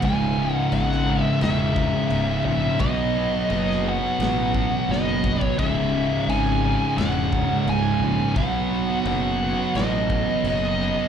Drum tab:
CC |x---x---x---x---|x---x---x-------|x---x---x---x---|x---x---x---x---|
SD |-----o--o-------|-----o--o---o---|--------o-------|--------o-------|
BD |o---------o-----|o---------o---oo|o---------o-----|o---------o-----|